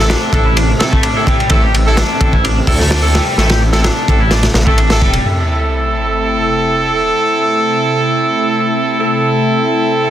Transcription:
Already playing: A1 C3 A3 C4
0.00 C4 E4 A4
0.10 D4, snare, ride
0.33 A1 C4 E4 A4, kick, ride
0.45 E4
0.57 D4, ride
0.80 C4 E4 A4, snare, ride
0.92 A3, kick
1.03 D4, ride
1.15 C4 E4 A4
1.27 G3, kick, ride
1.40 ride
1.50 A1 A3 C4 E4 A4, kick, ride
1.62 G4
1.74 ride
1.86 C4 E4 A4
1.97 D4, snare, ride
2.20 A1 C4 E4 A4, kick, ride
2.33 E4, kick
2.44 D4, ride
2.67 D2 C4 E4 A4, kick, open hi-hat
2.79 A3, snare
2.91 D4, snare, ride
3.03 C4 E4 A4
3.14 G3, snare, ride
3.38 A1 A3 C4 E4 A4, snare, ride
3.50 G4, snare, ride
3.73 C4 E4 A4, snare, ride
3.84 D4, snare, ride
4.08 A1 C4 E4 A4, kick, ride
4.20 E4
4.31 D4, snare, ride
4.43 snare, ride
4.54 A1, snare, ride
4.67 A3 C4 E4 A4, kick
4.78 D4, ride
4.90 C4 E4 A4, snare, ride
5.01 E1 G3, kick
5.13 ride
5.25 C3 A3 C4 E4 A4, sub drop
9.00 C4 E4 A4

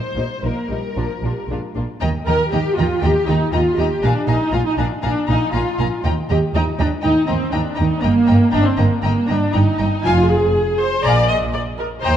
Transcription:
Already playing: C5
0.15 A#1 A#2 G3 A#3 D#4
0.41 A#1 A#2 A#3 D#4 A#4
0.69 A#1 A#2 G3 D#4
0.96 A#1 A#2 F3 D4 F4
1.22 A#1 A#2 G3 D4 F4
1.49 A#1 A#2 G#3 D4 F4
1.75 A#1 A#2 A#3 D4 F4
2.00 D#2 D#3 D#5 G5 A#5
2.26 D#2 D#3 A#4 D#5 G5 A#5
2.52 D#2 D#3 G4 D#5 G5 A#5
2.77 D#2 D#3 F4 D#5 G5 A#5
3.01 D#2 D#3 G4 D#5 G5 A#5
3.27 D#2 D#3 D#4 D#5 G5 A#5
3.52 D#2 D#3 F4 D#5 G5 A#5
3.78 D#2 D#3 G4 D#5 G5 A#5
4.02 A#1 A#2 D4 F5 G#5 A#5
4.27 A#1 A#2 D#4 F5 G#5 A#5
4.51 A#1 A#2 F4 F5 G#5 A#5
4.66 D#4
4.77 A#1 A#2 D4 F5 G#5 A#5
5.02 A#1 A#2 D4 F5 G#5 A#5
5.26 A#1 A#2 D#4 F5 G#5 A#5
5.51 A#1 A#2 F4 F5 G#5 A#5
5.79 A#1 A#2 F5 G#5 A#5
6.03 D#2 D#5 G5 A#5
6.29 D#2 G4 D#5 G5 A#5
6.55 D#2 D#4 D#5 G5 A#5
6.79 D#2 D4 D#5 G5 A#5
7.02 D#2 D#4 D#5 G5 A#5
7.26 D#2 C4 D#5 G5 A#5
7.52 D#2 D4 D#5 G5 A#5
7.75 D#4 D#5 G5 A#5
7.79 D#2
8.01 G1 G2 A#3 D#5 G5 A#5
8.26 G1 G2 D#5 G5 A#5
8.51 G1 G2 D4 D#5 G5 A#5
8.65 C4
8.76 G1 G2 A#3 D#5 G5 A#5
9.02 G1 G2 A#3 D#5 G5 A#5
9.27 G1 G2 D4 D#5 G5 A#5
9.52 G1 G2 D#4 D#5 G5 A#5
9.77 G1 G2 D#5 G5 A#5
10.03 F1 F2 F4 F5 G#5
10.29 G#4
10.80 C5
11.03 A#1 A#2 D5 F5 G#5 A#5
11.29 D#5
11.53 D5
11.79 A#4
12.03 D#2 C5 D#5 G5 A#5

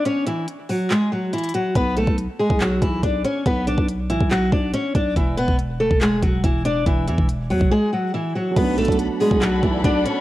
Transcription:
0.05 C#4 C#5, closed hi-hat
0.27 E3 E4, closed hi-hat
0.48 closed hi-hat
0.69 F#3 F#4, open hi-hat
0.91 G#3 G#4, clap, closed hi-hat
1.12 F#3 F#4
1.33 E3 E4, closed hi-hat
1.38 closed hi-hat
1.44 closed hi-hat
1.49 closed hi-hat
1.54 F#3 F#4, closed hi-hat
1.76 B1 B3 B4, kick, closed hi-hat
1.97 A3 A4, closed hi-hat
2.07 B1, kick
2.18 closed hi-hat
2.40 G#3 G#4
2.50 B1, kick
2.61 F#3 F#4, clap, closed hi-hat
2.82 B1 E3 E4, kick, closed hi-hat
3.03 B1 D4 D5, kick, closed hi-hat
3.25 C#4 C#5, closed hi-hat
3.46 B1 B3 B4, kick, closed hi-hat
3.67 D4 D5, closed hi-hat
3.78 B1, kick
3.88 closed hi-hat
4.10 E3 E4, closed hi-hat
4.20 B1, kick
4.31 F#3 F#4, clap, closed hi-hat
4.52 B1 D4 D5, kick
4.74 C#4 C#5, closed hi-hat
4.95 B1 D4 D5, kick, closed hi-hat
5.16 E1 E3 E4, kick, closed hi-hat
5.37 B3 B4, closed hi-hat
5.48 E1, kick
5.59 closed hi-hat
5.80 A3 A4
5.91 E1, kick
6.01 G#3 G#4, clap, closed hi-hat
6.22 E1 F#3 F#4, kick, closed hi-hat
6.44 E1 E3 E4, kick, closed hi-hat
6.65 D4 D5, closed hi-hat
6.86 E1 E3 E4, kick, closed hi-hat
7.08 E2 E3 E4, closed hi-hat
7.18 E1, kick
7.29 closed hi-hat
7.50 E2 F#3 F#4, open hi-hat
7.61 E1, kick
7.72 G#3 G#4
7.93 F#3 F#4
8.14 E3 E4
8.35 F#3 F#4
8.51 F#3 A3
8.57 B1 B3 A4 B4 D5 F#5 B5, kick, closed hi-hat, crash
8.62 D4
8.78 A3 A4, closed hi-hat
8.85 B1, kick, closed hi-hat
8.92 closed hi-hat
8.99 closed hi-hat
9.20 G#3 G#4, open hi-hat
9.31 B1, kick
9.42 F#3 F#4, clap, closed hi-hat
9.63 B1 E3 E4, kick
9.84 B1 D4 D5, kick, closed hi-hat
10.05 C#4 C#5, closed hi-hat

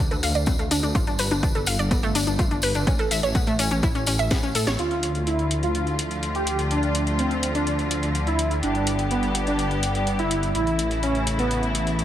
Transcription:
0.11 D2 A4, closed hi-hat, tambourine
0.23 D2 F5, open hi-hat, tambourine
0.35 D2 D5, closed hi-hat, tambourine
0.46 C4, kick, closed hi-hat, tambourine
0.59 D2 A3, closed hi-hat, tambourine
0.71 D2 D4, open hi-hat, tambourine
0.83 D2 D4, closed hi-hat, tambourine
0.95 G1 F4, kick, closed hi-hat, tambourine
1.07 G1 D4, closed hi-hat, tambourine
1.19 G1 B4, open hi-hat, tambourine
1.31 G1 D4, closed hi-hat, tambourine
1.43 D4, kick, closed hi-hat, tambourine
1.55 G1 A4, closed hi-hat, tambourine
1.66 G1 F5, open hi-hat, tambourine
1.79 G1 D5, closed hi-hat, tambourine
1.91 G1 B3, kick, closed hi-hat, tambourine
2.02 G1 A3, closed hi-hat, tambourine
2.15 G1 D4, open hi-hat, tambourine
2.27 G1 D4, closed hi-hat, tambourine
2.39 G1 F4, kick, closed hi-hat, tambourine
2.51 G1 D4, closed hi-hat, tambourine
2.62 G1 B4, open hi-hat, tambourine
2.74 G1 D4, closed hi-hat, tambourine
2.87 A1 C#4, kick, closed hi-hat, tambourine
2.99 A1 A4, closed hi-hat, tambourine
3.11 A1 E5, open hi-hat, tambourine
3.23 A1 C#5, closed hi-hat, tambourine
3.35 A1 B3, kick, closed hi-hat, tambourine
3.47 A1 A3, closed hi-hat, tambourine
3.59 A1 C#4, open hi-hat, tambourine
3.71 A1 C#4, closed hi-hat, tambourine
3.83 A1 E4, kick, closed hi-hat, tambourine
3.95 A1 C#4, closed hi-hat, tambourine
4.06 A1 C#4, open hi-hat, tambourine
4.19 A1 E5, closed hi-hat, tambourine
4.31 A2 B3, kick, snare, closed hi-hat, tambourine
4.43 A1 C#4, closed hi-hat, tambourine
4.55 A2 A4, open hi-hat, tambourine
4.67 A1 C#5, snare, closed hi-hat, tambourine
4.79 D2 D3 F3 A3 F4, closed hi-hat
4.91 closed hi-hat
5.03 closed hi-hat
5.15 closed hi-hat
5.27 E4, closed hi-hat
5.39 closed hi-hat
5.51 closed hi-hat
5.63 F4, closed hi-hat
5.75 closed hi-hat
5.87 closed hi-hat
5.99 closed hi-hat
6.11 closed hi-hat
6.23 closed hi-hat
6.35 G4, closed hi-hat
6.47 closed hi-hat
6.59 closed hi-hat
6.71 D4, closed hi-hat
6.83 closed hi-hat
6.95 closed hi-hat
7.07 closed hi-hat
7.19 C4, closed hi-hat
7.31 closed hi-hat
7.43 closed hi-hat
7.55 D4, closed hi-hat
7.67 closed hi-hat
7.79 closed hi-hat
7.91 closed hi-hat
8.03 closed hi-hat
8.15 closed hi-hat
8.27 E4, closed hi-hat
8.39 closed hi-hat
8.51 closed hi-hat
8.63 G1 G3 B3 D4 G4, closed hi-hat
8.75 closed hi-hat
8.87 closed hi-hat
8.99 closed hi-hat
9.11 B3, closed hi-hat
9.23 closed hi-hat
9.35 closed hi-hat
9.47 D4, closed hi-hat
9.59 closed hi-hat
9.71 closed hi-hat
9.83 closed hi-hat
9.95 closed hi-hat
10.07 closed hi-hat
10.19 E4, closed hi-hat
10.31 closed hi-hat
10.43 closed hi-hat
10.55 A1 C#3 E3 A3 E4, closed hi-hat
10.67 closed hi-hat
10.79 closed hi-hat
10.91 closed hi-hat
11.03 C#4, closed hi-hat
11.15 closed hi-hat
11.27 closed hi-hat
11.39 B3, closed hi-hat
11.51 closed hi-hat
11.63 closed hi-hat
11.75 closed hi-hat
11.87 closed hi-hat
11.99 closed hi-hat

